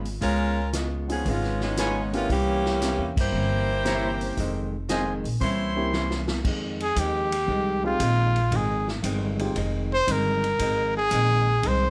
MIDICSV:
0, 0, Header, 1, 8, 480
1, 0, Start_track
1, 0, Key_signature, -4, "minor"
1, 0, Tempo, 519031
1, 196, Time_signature, 4, 2, 24, 8
1, 11005, End_track
2, 0, Start_track
2, 0, Title_t, "Trumpet section"
2, 0, Program_c, 0, 61
2, 1641, Note_on_c, 0, 80, 90
2, 1642, Note_on_c, 0, 65, 80
2, 1643, Note_on_c, 0, 71, 73
2, 1644, Note_on_c, 0, 73, 76
2, 1863, Note_off_c, 0, 80, 0
2, 1864, Note_off_c, 0, 65, 0
2, 1865, Note_off_c, 0, 71, 0
2, 1865, Note_off_c, 0, 73, 0
2, 3562, Note_on_c, 0, 64, 75
2, 3563, Note_on_c, 0, 73, 68
2, 3564, Note_on_c, 0, 72, 71
2, 3564, Note_on_c, 0, 82, 90
2, 3784, Note_off_c, 0, 64, 0
2, 3785, Note_off_c, 0, 73, 0
2, 3785, Note_off_c, 0, 82, 0
2, 3786, Note_off_c, 0, 72, 0
2, 4523, Note_on_c, 0, 65, 82
2, 4523, Note_on_c, 0, 72, 77
2, 4523, Note_on_c, 0, 75, 74
2, 4524, Note_on_c, 0, 80, 93
2, 4745, Note_off_c, 0, 65, 0
2, 4745, Note_off_c, 0, 72, 0
2, 4745, Note_off_c, 0, 75, 0
2, 4746, Note_off_c, 0, 80, 0
2, 4997, Note_on_c, 0, 64, 86
2, 4999, Note_on_c, 0, 73, 72
2, 5000, Note_on_c, 0, 72, 81
2, 5000, Note_on_c, 0, 84, 95
2, 5743, Note_off_c, 0, 64, 0
2, 5744, Note_off_c, 0, 72, 0
2, 5744, Note_off_c, 0, 73, 0
2, 5744, Note_off_c, 0, 84, 0
2, 11005, End_track
3, 0, Start_track
3, 0, Title_t, "Trumpet"
3, 0, Program_c, 1, 56
3, 6315, Note_on_c, 1, 68, 87
3, 6470, Note_on_c, 1, 67, 78
3, 6483, Note_off_c, 1, 68, 0
3, 7266, Note_off_c, 1, 67, 0
3, 7271, Note_on_c, 1, 65, 90
3, 7918, Note_on_c, 1, 68, 74
3, 7932, Note_off_c, 1, 65, 0
3, 8230, Note_off_c, 1, 68, 0
3, 9189, Note_on_c, 1, 72, 102
3, 9359, Note_on_c, 1, 70, 83
3, 9373, Note_off_c, 1, 72, 0
3, 10142, Note_off_c, 1, 70, 0
3, 10148, Note_on_c, 1, 68, 97
3, 10795, Note_on_c, 1, 72, 80
3, 10809, Note_off_c, 1, 68, 0
3, 11005, Note_off_c, 1, 72, 0
3, 11005, End_track
4, 0, Start_track
4, 0, Title_t, "Grand piano"
4, 0, Program_c, 2, 0
4, 1000, Note_on_c, 2, 59, 54
4, 1007, Note_on_c, 2, 61, 50
4, 1011, Note_on_c, 2, 63, 51
4, 1011, Note_on_c, 2, 65, 53
4, 1015, Note_on_c, 2, 68, 62
4, 1604, Note_off_c, 2, 59, 0
4, 1607, Note_off_c, 2, 61, 0
4, 1609, Note_off_c, 2, 63, 0
4, 1609, Note_off_c, 2, 65, 0
4, 1611, Note_off_c, 2, 68, 0
4, 1969, Note_on_c, 2, 61, 57
4, 1970, Note_on_c, 2, 58, 59
4, 1970, Note_on_c, 2, 60, 52
4, 1975, Note_on_c, 2, 64, 55
4, 1975, Note_on_c, 2, 67, 67
4, 2103, Note_off_c, 2, 58, 0
4, 2103, Note_off_c, 2, 60, 0
4, 2103, Note_off_c, 2, 61, 0
4, 2106, Note_off_c, 2, 64, 0
4, 2106, Note_off_c, 2, 67, 0
4, 3552, Note_on_c, 2, 58, 55
4, 3555, Note_on_c, 2, 60, 47
4, 3558, Note_on_c, 2, 61, 51
4, 3559, Note_on_c, 2, 64, 48
4, 3563, Note_on_c, 2, 67, 62
4, 4035, Note_off_c, 2, 58, 0
4, 4037, Note_off_c, 2, 60, 0
4, 4039, Note_off_c, 2, 61, 0
4, 4039, Note_off_c, 2, 64, 0
4, 4041, Note_off_c, 2, 67, 0
4, 5325, Note_on_c, 2, 58, 58
4, 5327, Note_on_c, 2, 60, 52
4, 5328, Note_on_c, 2, 61, 59
4, 5330, Note_on_c, 2, 64, 55
4, 5333, Note_on_c, 2, 67, 67
4, 5461, Note_off_c, 2, 58, 0
4, 5463, Note_off_c, 2, 60, 0
4, 5463, Note_off_c, 2, 61, 0
4, 5464, Note_off_c, 2, 64, 0
4, 5466, Note_off_c, 2, 67, 0
4, 7245, Note_on_c, 2, 56, 70
4, 7251, Note_on_c, 2, 60, 66
4, 7252, Note_on_c, 2, 65, 62
4, 7253, Note_on_c, 2, 63, 65
4, 7256, Note_on_c, 2, 67, 75
4, 7382, Note_off_c, 2, 56, 0
4, 7385, Note_off_c, 2, 60, 0
4, 7385, Note_off_c, 2, 63, 0
4, 7385, Note_off_c, 2, 65, 0
4, 7387, Note_off_c, 2, 67, 0
4, 8686, Note_on_c, 2, 56, 59
4, 8688, Note_on_c, 2, 60, 60
4, 8694, Note_on_c, 2, 63, 52
4, 8697, Note_on_c, 2, 65, 57
4, 8698, Note_on_c, 2, 67, 66
4, 8822, Note_off_c, 2, 56, 0
4, 8823, Note_off_c, 2, 60, 0
4, 8826, Note_off_c, 2, 63, 0
4, 8827, Note_off_c, 2, 65, 0
4, 8828, Note_off_c, 2, 67, 0
4, 11005, End_track
5, 0, Start_track
5, 0, Title_t, "Saxophone section"
5, 0, Program_c, 3, 65
5, 199, Note_on_c, 3, 70, 98
5, 202, Note_on_c, 3, 56, 88
5, 203, Note_on_c, 3, 65, 93
5, 204, Note_on_c, 3, 61, 92
5, 645, Note_off_c, 3, 70, 0
5, 646, Note_off_c, 3, 56, 0
5, 647, Note_off_c, 3, 61, 0
5, 647, Note_off_c, 3, 65, 0
5, 1022, Note_on_c, 3, 68, 81
5, 1023, Note_on_c, 3, 61, 66
5, 1025, Note_on_c, 3, 59, 72
5, 1026, Note_on_c, 3, 53, 68
5, 1154, Note_off_c, 3, 68, 0
5, 1155, Note_off_c, 3, 61, 0
5, 1156, Note_off_c, 3, 53, 0
5, 1156, Note_off_c, 3, 59, 0
5, 1178, Note_on_c, 3, 56, 75
5, 1178, Note_on_c, 3, 59, 68
5, 1179, Note_on_c, 3, 61, 69
5, 1181, Note_on_c, 3, 65, 78
5, 1495, Note_off_c, 3, 59, 0
5, 1499, Note_off_c, 3, 56, 0
5, 1499, Note_off_c, 3, 61, 0
5, 1500, Note_off_c, 3, 65, 0
5, 1506, Note_on_c, 3, 59, 74
5, 1509, Note_on_c, 3, 63, 84
5, 1512, Note_on_c, 3, 61, 75
5, 1513, Note_on_c, 3, 56, 70
5, 1945, Note_off_c, 3, 59, 0
5, 1946, Note_off_c, 3, 63, 0
5, 1948, Note_off_c, 3, 56, 0
5, 1948, Note_off_c, 3, 61, 0
5, 1982, Note_on_c, 3, 61, 76
5, 1983, Note_on_c, 3, 56, 78
5, 1983, Note_on_c, 3, 59, 79
5, 1984, Note_on_c, 3, 65, 96
5, 2114, Note_off_c, 3, 61, 0
5, 2115, Note_off_c, 3, 56, 0
5, 2115, Note_off_c, 3, 59, 0
5, 2115, Note_off_c, 3, 65, 0
5, 2135, Note_on_c, 3, 52, 86
5, 2135, Note_on_c, 3, 67, 98
5, 2139, Note_on_c, 3, 61, 86
5, 2140, Note_on_c, 3, 58, 91
5, 2901, Note_off_c, 3, 52, 0
5, 2901, Note_off_c, 3, 67, 0
5, 2903, Note_off_c, 3, 58, 0
5, 2903, Note_off_c, 3, 61, 0
5, 2951, Note_on_c, 3, 64, 88
5, 2951, Note_on_c, 3, 67, 87
5, 2956, Note_on_c, 3, 58, 85
5, 2957, Note_on_c, 3, 72, 101
5, 4049, Note_off_c, 3, 64, 0
5, 4381, Note_off_c, 3, 67, 0
5, 4383, Note_off_c, 3, 58, 0
5, 4384, Note_off_c, 3, 72, 0
5, 11005, End_track
6, 0, Start_track
6, 0, Title_t, "Hollow-body jazz guitar"
6, 0, Program_c, 4, 26
6, 195, Note_on_c, 4, 49, 46
6, 206, Note_on_c, 4, 56, 45
6, 218, Note_on_c, 4, 59, 44
6, 226, Note_on_c, 4, 65, 50
6, 542, Note_off_c, 4, 49, 0
6, 548, Note_off_c, 4, 56, 0
6, 553, Note_off_c, 4, 59, 0
6, 557, Note_off_c, 4, 65, 0
6, 674, Note_on_c, 4, 49, 62
6, 682, Note_on_c, 4, 56, 67
6, 688, Note_on_c, 4, 59, 62
6, 694, Note_on_c, 4, 65, 68
6, 1022, Note_off_c, 4, 49, 0
6, 1026, Note_off_c, 4, 56, 0
6, 1029, Note_off_c, 4, 59, 0
6, 1032, Note_off_c, 4, 65, 0
6, 1154, Note_on_c, 4, 49, 43
6, 1162, Note_on_c, 4, 56, 46
6, 1172, Note_on_c, 4, 59, 47
6, 1185, Note_on_c, 4, 65, 46
6, 1502, Note_off_c, 4, 49, 0
6, 1506, Note_off_c, 4, 56, 0
6, 1511, Note_off_c, 4, 59, 0
6, 1517, Note_off_c, 4, 65, 0
6, 1637, Note_on_c, 4, 49, 55
6, 1648, Note_on_c, 4, 56, 62
6, 1653, Note_on_c, 4, 59, 63
6, 1657, Note_on_c, 4, 65, 57
6, 1983, Note_off_c, 4, 49, 0
6, 1989, Note_off_c, 4, 56, 0
6, 1991, Note_off_c, 4, 59, 0
6, 1993, Note_off_c, 4, 65, 0
6, 2119, Note_on_c, 4, 48, 43
6, 2129, Note_on_c, 4, 52, 46
6, 2139, Note_on_c, 4, 58, 51
6, 2151, Note_on_c, 4, 61, 51
6, 2465, Note_off_c, 4, 48, 0
6, 2470, Note_off_c, 4, 52, 0
6, 2474, Note_off_c, 4, 58, 0
6, 2480, Note_off_c, 4, 61, 0
6, 2599, Note_on_c, 4, 48, 62
6, 2606, Note_on_c, 4, 52, 61
6, 2614, Note_on_c, 4, 58, 63
6, 2620, Note_on_c, 4, 61, 72
6, 2945, Note_off_c, 4, 48, 0
6, 2948, Note_off_c, 4, 52, 0
6, 2952, Note_off_c, 4, 58, 0
6, 2955, Note_off_c, 4, 61, 0
6, 3080, Note_on_c, 4, 48, 47
6, 3091, Note_on_c, 4, 52, 43
6, 3102, Note_on_c, 4, 58, 48
6, 3113, Note_on_c, 4, 61, 46
6, 3425, Note_off_c, 4, 48, 0
6, 3431, Note_off_c, 4, 52, 0
6, 3436, Note_off_c, 4, 58, 0
6, 3442, Note_off_c, 4, 61, 0
6, 3562, Note_on_c, 4, 48, 61
6, 3568, Note_on_c, 4, 52, 63
6, 3577, Note_on_c, 4, 58, 69
6, 3584, Note_on_c, 4, 61, 67
6, 3907, Note_off_c, 4, 48, 0
6, 3909, Note_off_c, 4, 52, 0
6, 3914, Note_off_c, 4, 58, 0
6, 3917, Note_off_c, 4, 61, 0
6, 4040, Note_on_c, 4, 41, 54
6, 4053, Note_on_c, 4, 51, 51
6, 4062, Note_on_c, 4, 56, 53
6, 4069, Note_on_c, 4, 60, 60
6, 4385, Note_off_c, 4, 41, 0
6, 4392, Note_off_c, 4, 51, 0
6, 4396, Note_off_c, 4, 56, 0
6, 4400, Note_off_c, 4, 60, 0
6, 4521, Note_on_c, 4, 41, 60
6, 4528, Note_on_c, 4, 51, 78
6, 4535, Note_on_c, 4, 56, 70
6, 4541, Note_on_c, 4, 60, 74
6, 4866, Note_off_c, 4, 41, 0
6, 4870, Note_off_c, 4, 51, 0
6, 4873, Note_off_c, 4, 56, 0
6, 4876, Note_off_c, 4, 60, 0
6, 5002, Note_on_c, 4, 48, 53
6, 5017, Note_on_c, 4, 52, 50
6, 5025, Note_on_c, 4, 58, 50
6, 5037, Note_on_c, 4, 61, 51
6, 5346, Note_off_c, 4, 48, 0
6, 5354, Note_off_c, 4, 52, 0
6, 5358, Note_off_c, 4, 58, 0
6, 5364, Note_off_c, 4, 61, 0
6, 5487, Note_on_c, 4, 48, 62
6, 5493, Note_on_c, 4, 52, 63
6, 5498, Note_on_c, 4, 58, 64
6, 5504, Note_on_c, 4, 61, 67
6, 5829, Note_off_c, 4, 48, 0
6, 5832, Note_off_c, 4, 52, 0
6, 5835, Note_off_c, 4, 58, 0
6, 5838, Note_off_c, 4, 61, 0
6, 5964, Note_on_c, 4, 41, 50
6, 5975, Note_on_c, 4, 51, 55
6, 5985, Note_on_c, 4, 56, 57
6, 5992, Note_on_c, 4, 60, 58
6, 6307, Note_off_c, 4, 41, 0
6, 6313, Note_off_c, 4, 51, 0
6, 6318, Note_off_c, 4, 56, 0
6, 6322, Note_off_c, 4, 60, 0
6, 6436, Note_on_c, 4, 41, 58
6, 6444, Note_on_c, 4, 51, 59
6, 6452, Note_on_c, 4, 56, 60
6, 6458, Note_on_c, 4, 60, 61
6, 6783, Note_off_c, 4, 41, 0
6, 6788, Note_off_c, 4, 51, 0
6, 6792, Note_off_c, 4, 56, 0
6, 6795, Note_off_c, 4, 60, 0
6, 6907, Note_on_c, 4, 41, 46
6, 6918, Note_on_c, 4, 51, 39
6, 6930, Note_on_c, 4, 56, 46
6, 6937, Note_on_c, 4, 60, 44
6, 7259, Note_off_c, 4, 41, 0
6, 7265, Note_off_c, 4, 51, 0
6, 7271, Note_off_c, 4, 56, 0
6, 7274, Note_off_c, 4, 60, 0
6, 7396, Note_on_c, 4, 41, 51
6, 7402, Note_on_c, 4, 51, 61
6, 7413, Note_on_c, 4, 56, 59
6, 7413, Note_on_c, 4, 60, 66
6, 7744, Note_off_c, 4, 41, 0
6, 7747, Note_off_c, 4, 51, 0
6, 7752, Note_off_c, 4, 56, 0
6, 7752, Note_off_c, 4, 60, 0
6, 7869, Note_on_c, 4, 41, 47
6, 7883, Note_on_c, 4, 51, 49
6, 7888, Note_on_c, 4, 56, 48
6, 7897, Note_on_c, 4, 60, 48
6, 8220, Note_off_c, 4, 41, 0
6, 8227, Note_off_c, 4, 51, 0
6, 8230, Note_off_c, 4, 56, 0
6, 8234, Note_off_c, 4, 60, 0
6, 8347, Note_on_c, 4, 41, 63
6, 8356, Note_on_c, 4, 51, 64
6, 8363, Note_on_c, 4, 56, 68
6, 8369, Note_on_c, 4, 60, 70
6, 8699, Note_off_c, 4, 41, 0
6, 8703, Note_off_c, 4, 51, 0
6, 8707, Note_off_c, 4, 56, 0
6, 8710, Note_off_c, 4, 60, 0
6, 8828, Note_on_c, 4, 41, 47
6, 8841, Note_on_c, 4, 51, 49
6, 8852, Note_on_c, 4, 56, 52
6, 8858, Note_on_c, 4, 60, 59
6, 9180, Note_off_c, 4, 41, 0
6, 9186, Note_off_c, 4, 51, 0
6, 9191, Note_off_c, 4, 56, 0
6, 9194, Note_off_c, 4, 60, 0
6, 9311, Note_on_c, 4, 41, 53
6, 9320, Note_on_c, 4, 51, 55
6, 9327, Note_on_c, 4, 56, 65
6, 9335, Note_on_c, 4, 60, 65
6, 9661, Note_off_c, 4, 41, 0
6, 9665, Note_off_c, 4, 51, 0
6, 9669, Note_off_c, 4, 56, 0
6, 9673, Note_off_c, 4, 60, 0
6, 9791, Note_on_c, 4, 41, 45
6, 9802, Note_on_c, 4, 51, 44
6, 9813, Note_on_c, 4, 56, 50
6, 9823, Note_on_c, 4, 60, 51
6, 10141, Note_off_c, 4, 41, 0
6, 10147, Note_off_c, 4, 51, 0
6, 10152, Note_off_c, 4, 56, 0
6, 10157, Note_off_c, 4, 60, 0
6, 10274, Note_on_c, 4, 41, 60
6, 10281, Note_on_c, 4, 51, 64
6, 10287, Note_on_c, 4, 56, 61
6, 10294, Note_on_c, 4, 60, 68
6, 10622, Note_off_c, 4, 41, 0
6, 10626, Note_off_c, 4, 51, 0
6, 10629, Note_off_c, 4, 56, 0
6, 10633, Note_off_c, 4, 60, 0
6, 10747, Note_on_c, 4, 41, 42
6, 10759, Note_on_c, 4, 51, 46
6, 10770, Note_on_c, 4, 56, 49
6, 10782, Note_on_c, 4, 60, 46
6, 11005, Note_off_c, 4, 41, 0
6, 11005, Note_off_c, 4, 51, 0
6, 11005, Note_off_c, 4, 56, 0
6, 11005, Note_off_c, 4, 60, 0
6, 11005, End_track
7, 0, Start_track
7, 0, Title_t, "Upright bass"
7, 0, Program_c, 5, 32
7, 0, Note_on_c, 5, 32, 82
7, 155, Note_off_c, 5, 32, 0
7, 197, Note_on_c, 5, 37, 81
7, 1120, Note_off_c, 5, 37, 0
7, 1158, Note_on_c, 5, 32, 83
7, 2081, Note_off_c, 5, 32, 0
7, 2120, Note_on_c, 5, 36, 87
7, 2722, Note_off_c, 5, 36, 0
7, 2757, Note_on_c, 5, 40, 65
7, 2906, Note_off_c, 5, 40, 0
7, 2922, Note_on_c, 5, 43, 70
7, 3069, Note_off_c, 5, 43, 0
7, 3073, Note_on_c, 5, 31, 89
7, 3999, Note_off_c, 5, 31, 0
7, 4040, Note_on_c, 5, 29, 82
7, 4814, Note_off_c, 5, 29, 0
7, 4846, Note_on_c, 5, 34, 73
7, 4986, Note_off_c, 5, 34, 0
7, 5000, Note_on_c, 5, 36, 82
7, 5923, Note_off_c, 5, 36, 0
7, 5959, Note_on_c, 5, 41, 74
7, 6425, Note_off_c, 5, 41, 0
7, 6439, Note_on_c, 5, 39, 92
7, 6905, Note_off_c, 5, 39, 0
7, 6916, Note_on_c, 5, 36, 77
7, 7383, Note_off_c, 5, 36, 0
7, 7393, Note_on_c, 5, 34, 86
7, 7862, Note_off_c, 5, 34, 0
7, 7874, Note_on_c, 5, 32, 85
7, 8342, Note_off_c, 5, 32, 0
7, 8355, Note_on_c, 5, 31, 85
7, 8823, Note_off_c, 5, 31, 0
7, 8834, Note_on_c, 5, 29, 84
7, 9302, Note_off_c, 5, 29, 0
7, 9316, Note_on_c, 5, 31, 89
7, 9783, Note_off_c, 5, 31, 0
7, 9797, Note_on_c, 5, 32, 81
7, 10263, Note_off_c, 5, 32, 0
7, 10273, Note_on_c, 5, 34, 89
7, 10741, Note_off_c, 5, 34, 0
7, 10756, Note_on_c, 5, 36, 83
7, 11005, Note_off_c, 5, 36, 0
7, 11005, End_track
8, 0, Start_track
8, 0, Title_t, "Drums"
8, 49, Note_on_c, 9, 46, 39
8, 142, Note_off_c, 9, 46, 0
8, 200, Note_on_c, 9, 36, 34
8, 202, Note_on_c, 9, 46, 48
8, 292, Note_off_c, 9, 36, 0
8, 294, Note_off_c, 9, 46, 0
8, 678, Note_on_c, 9, 42, 58
8, 679, Note_on_c, 9, 38, 66
8, 770, Note_off_c, 9, 42, 0
8, 771, Note_off_c, 9, 38, 0
8, 1012, Note_on_c, 9, 46, 41
8, 1105, Note_off_c, 9, 46, 0
8, 1161, Note_on_c, 9, 36, 31
8, 1162, Note_on_c, 9, 46, 47
8, 1253, Note_off_c, 9, 36, 0
8, 1254, Note_off_c, 9, 46, 0
8, 1323, Note_on_c, 9, 38, 26
8, 1415, Note_off_c, 9, 38, 0
8, 1485, Note_on_c, 9, 38, 44
8, 1577, Note_off_c, 9, 38, 0
8, 1640, Note_on_c, 9, 42, 59
8, 1641, Note_on_c, 9, 38, 69
8, 1732, Note_off_c, 9, 42, 0
8, 1733, Note_off_c, 9, 38, 0
8, 1974, Note_on_c, 9, 46, 40
8, 2066, Note_off_c, 9, 46, 0
8, 2123, Note_on_c, 9, 36, 36
8, 2126, Note_on_c, 9, 46, 47
8, 2216, Note_off_c, 9, 36, 0
8, 2219, Note_off_c, 9, 46, 0
8, 2456, Note_on_c, 9, 38, 56
8, 2548, Note_off_c, 9, 38, 0
8, 2605, Note_on_c, 9, 42, 57
8, 2606, Note_on_c, 9, 38, 69
8, 2698, Note_off_c, 9, 42, 0
8, 2699, Note_off_c, 9, 38, 0
8, 2935, Note_on_c, 9, 36, 80
8, 2936, Note_on_c, 9, 49, 73
8, 3027, Note_off_c, 9, 36, 0
8, 3028, Note_off_c, 9, 49, 0
8, 3565, Note_on_c, 9, 42, 53
8, 3566, Note_on_c, 9, 38, 70
8, 3657, Note_off_c, 9, 42, 0
8, 3658, Note_off_c, 9, 38, 0
8, 3893, Note_on_c, 9, 46, 39
8, 3985, Note_off_c, 9, 46, 0
8, 4044, Note_on_c, 9, 36, 36
8, 4044, Note_on_c, 9, 46, 48
8, 4136, Note_off_c, 9, 36, 0
8, 4136, Note_off_c, 9, 46, 0
8, 4524, Note_on_c, 9, 42, 53
8, 4525, Note_on_c, 9, 38, 67
8, 4616, Note_off_c, 9, 42, 0
8, 4617, Note_off_c, 9, 38, 0
8, 4857, Note_on_c, 9, 46, 41
8, 4949, Note_off_c, 9, 46, 0
8, 5004, Note_on_c, 9, 36, 32
8, 5004, Note_on_c, 9, 46, 45
8, 5096, Note_off_c, 9, 36, 0
8, 5096, Note_off_c, 9, 46, 0
8, 5484, Note_on_c, 9, 38, 51
8, 5576, Note_off_c, 9, 38, 0
8, 5645, Note_on_c, 9, 38, 59
8, 5738, Note_off_c, 9, 38, 0
8, 5805, Note_on_c, 9, 38, 84
8, 5897, Note_off_c, 9, 38, 0
8, 5962, Note_on_c, 9, 36, 71
8, 5962, Note_on_c, 9, 49, 74
8, 6054, Note_off_c, 9, 36, 0
8, 6055, Note_off_c, 9, 49, 0
8, 6292, Note_on_c, 9, 51, 48
8, 6385, Note_off_c, 9, 51, 0
8, 6440, Note_on_c, 9, 36, 20
8, 6440, Note_on_c, 9, 44, 64
8, 6440, Note_on_c, 9, 51, 65
8, 6532, Note_off_c, 9, 36, 0
8, 6532, Note_off_c, 9, 44, 0
8, 6532, Note_off_c, 9, 51, 0
8, 6771, Note_on_c, 9, 51, 66
8, 6864, Note_off_c, 9, 51, 0
8, 6920, Note_on_c, 9, 36, 25
8, 7012, Note_off_c, 9, 36, 0
8, 7397, Note_on_c, 9, 44, 55
8, 7397, Note_on_c, 9, 51, 71
8, 7398, Note_on_c, 9, 36, 26
8, 7489, Note_off_c, 9, 44, 0
8, 7489, Note_off_c, 9, 51, 0
8, 7490, Note_off_c, 9, 36, 0
8, 7728, Note_on_c, 9, 51, 42
8, 7821, Note_off_c, 9, 51, 0
8, 7878, Note_on_c, 9, 36, 18
8, 7878, Note_on_c, 9, 51, 63
8, 7970, Note_off_c, 9, 36, 0
8, 7970, Note_off_c, 9, 51, 0
8, 8212, Note_on_c, 9, 38, 52
8, 8304, Note_off_c, 9, 38, 0
8, 8357, Note_on_c, 9, 44, 61
8, 8357, Note_on_c, 9, 51, 70
8, 8358, Note_on_c, 9, 36, 18
8, 8449, Note_off_c, 9, 44, 0
8, 8449, Note_off_c, 9, 51, 0
8, 8450, Note_off_c, 9, 36, 0
8, 8688, Note_on_c, 9, 51, 48
8, 8780, Note_off_c, 9, 51, 0
8, 8837, Note_on_c, 9, 36, 19
8, 8838, Note_on_c, 9, 51, 56
8, 8930, Note_off_c, 9, 36, 0
8, 8931, Note_off_c, 9, 51, 0
8, 9319, Note_on_c, 9, 36, 26
8, 9320, Note_on_c, 9, 44, 54
8, 9320, Note_on_c, 9, 51, 75
8, 9411, Note_off_c, 9, 36, 0
8, 9412, Note_off_c, 9, 44, 0
8, 9412, Note_off_c, 9, 51, 0
8, 9652, Note_on_c, 9, 51, 48
8, 9745, Note_off_c, 9, 51, 0
8, 9797, Note_on_c, 9, 51, 69
8, 9799, Note_on_c, 9, 36, 28
8, 9890, Note_off_c, 9, 51, 0
8, 9891, Note_off_c, 9, 36, 0
8, 10273, Note_on_c, 9, 44, 57
8, 10273, Note_on_c, 9, 51, 72
8, 10278, Note_on_c, 9, 36, 18
8, 10366, Note_off_c, 9, 44, 0
8, 10366, Note_off_c, 9, 51, 0
8, 10370, Note_off_c, 9, 36, 0
8, 10757, Note_on_c, 9, 51, 62
8, 10758, Note_on_c, 9, 36, 20
8, 10850, Note_off_c, 9, 36, 0
8, 10850, Note_off_c, 9, 51, 0
8, 11005, End_track
0, 0, End_of_file